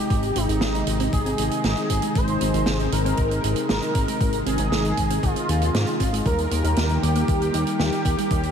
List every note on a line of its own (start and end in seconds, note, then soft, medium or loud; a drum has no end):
0.00 6.22 C3 medium
0.00 6.22 D#3 medium
0.00 6.22 G#3 medium
0.00 6.22 D#4 medium
0.00 0.37 G4 loud
0.10 0.32 G#1 loud
0.10 0.19 G#3 medium
0.10 kick loud
0.10 closed hi-hat medium
0.23 closed hi-hat soft
0.36 0.47 G#1 medium
0.36 0.48 C4 medium
0.36 1.03 D#4 loud
0.36 closed hi-hat loud
0.49 0.60 G#1 loud
0.49 0.61 D#4 medium
0.49 closed hi-hat medium
0.61 0.83 G#1 medium
0.61 0.67 G#4 medium
0.61 snare loud
0.61 closed hi-hat medium
0.75 0.83 D#4 medium
0.75 closed hi-hat soft
0.87 1.09 G#1 medium
0.87 closed hi-hat loud
1.00 1.05 C4 loud
1.00 closed hi-hat medium
1.13 1.34 G#1 medium
1.13 1.22 G#3 medium
1.13 2.17 G#4 loud
1.13 kick loud
1.13 closed hi-hat medium
1.26 1.31 C4 medium
1.26 closed hi-hat soft
1.38 1.49 G#1 medium
1.38 1.47 D#4 medium
1.38 closed hi-hat loud
1.51 closed hi-hat medium
1.64 1.75 G#1 medium
1.64 1.70 G#4 medium
1.64 snare loud
1.64 closed hi-hat medium
1.77 1.86 D#4 medium
1.77 closed hi-hat soft
1.90 2.00 G#1 medium
1.90 1.99 C4 medium
1.90 kick medium
1.90 closed hi-hat loud
2.02 2.12 G#3 loud
2.02 closed hi-hat medium
2.15 2.37 G#1 loud
2.15 2.24 G#3 medium
2.15 2.82 C5 loud
2.15 kick loud
2.15 closed hi-hat medium
2.27 closed hi-hat soft
2.41 2.52 G#1 medium
2.41 2.53 C4 medium
2.41 closed hi-hat loud
2.54 2.65 G#1 loud
2.54 2.66 D#4 medium
2.54 closed hi-hat medium
2.66 2.88 G#1 medium
2.66 2.72 G#4 medium
2.66 snare loud
2.66 closed hi-hat medium
2.79 2.88 D#4 medium
2.79 closed hi-hat soft
2.92 3.14 G#1 medium
2.92 3.59 A#4 loud
2.92 closed hi-hat loud
3.05 3.11 C4 loud
3.05 closed hi-hat medium
3.17 3.39 G#1 medium
3.17 3.27 G#3 medium
3.17 kick loud
3.17 closed hi-hat medium
3.31 3.36 C4 medium
3.31 closed hi-hat soft
3.44 3.54 G#1 medium
3.44 3.53 D#4 medium
3.44 closed hi-hat loud
3.56 closed hi-hat medium
3.69 3.80 G#1 loud
3.69 3.75 G#4 medium
3.69 4.36 A#4 loud
3.69 snare loud
3.69 closed hi-hat medium
3.82 3.91 D#4 medium
3.82 closed hi-hat soft
3.95 4.06 G#1 medium
3.95 4.04 C4 medium
3.95 kick loud
3.95 closed hi-hat loud
4.08 4.17 G#3 loud
4.08 closed hi-hat medium
4.21 4.42 G#1 loud
4.21 4.30 G#3 medium
4.21 kick loud
4.21 closed hi-hat medium
4.33 closed hi-hat soft
4.46 4.57 G#1 medium
4.46 4.59 C4 medium
4.46 5.25 G#4 loud
4.46 closed hi-hat medium
4.58 4.70 G#1 loud
4.58 4.71 D#4 medium
4.58 closed hi-hat medium
4.72 4.93 G#1 medium
4.72 4.77 G#4 medium
4.72 snare loud
4.72 closed hi-hat medium
4.85 4.94 D#4 medium
4.85 closed hi-hat soft
4.97 5.19 G#1 medium
4.97 kick medium
4.97 closed hi-hat loud
5.10 5.16 C4 loud
5.10 closed hi-hat medium
5.23 5.34 G#1 medium
5.23 5.32 G#3 medium
5.23 6.15 F4 loud
5.23 kick loud
5.23 closed hi-hat medium
5.36 5.41 C4 medium
5.36 closed hi-hat medium
5.49 5.70 D#2 loud
5.49 5.58 D#4 medium
5.49 closed hi-hat loud
5.62 closed hi-hat medium
5.74 5.85 G#2 loud
5.74 5.80 G#4 medium
5.74 snare loud
5.74 closed hi-hat medium
5.87 5.96 D#4 medium
5.87 closed hi-hat soft
6.00 6.21 G#1 loud
6.00 6.09 C4 medium
6.00 kick medium
6.00 closed hi-hat medium
6.13 6.22 G#3 loud
6.13 closed hi-hat medium
6.26 6.47 D#2 loud
6.26 8.51 D#3 medium
6.26 8.51 G3 medium
6.26 6.35 G3 medium
6.26 8.51 A#3 medium
6.26 8.51 G4 medium
6.26 6.92 A#4 loud
6.26 kick loud
6.26 closed hi-hat medium
6.38 closed hi-hat soft
6.51 6.62 D#2 medium
6.51 6.64 A#3 medium
6.51 closed hi-hat medium
6.64 6.75 D#2 loud
6.64 6.76 D#4 medium
6.64 closed hi-hat medium
6.76 6.98 D#2 medium
6.76 6.82 G4 medium
6.76 snare loud
6.76 closed hi-hat medium
6.89 6.99 D#4 medium
6.89 closed hi-hat soft
7.02 7.24 D#2 medium
7.02 7.69 G4 loud
7.02 closed hi-hat medium
7.15 7.21 A#3 loud
7.15 closed hi-hat medium
7.28 7.50 D#2 medium
7.28 7.37 G3 medium
7.28 kick loud
7.28 closed hi-hat medium
7.41 7.46 A#3 medium
7.41 closed hi-hat soft
7.54 7.65 D#2 medium
7.54 7.63 D#4 medium
7.54 closed hi-hat loud
7.67 closed hi-hat medium
7.79 7.90 D#2 medium
7.79 8.51 G4 loud
7.79 7.85 G4 medium
7.79 snare loud
7.79 closed hi-hat medium
7.92 8.01 D#4 medium
7.92 closed hi-hat soft
8.05 8.16 D#2 medium
8.05 8.14 A#3 medium
8.05 kick loud
8.05 closed hi-hat medium
8.18 8.27 G3 loud
8.18 closed hi-hat medium
8.31 8.51 D#2 loud
8.31 8.40 G3 medium
8.31 kick loud
8.31 closed hi-hat medium
8.43 closed hi-hat soft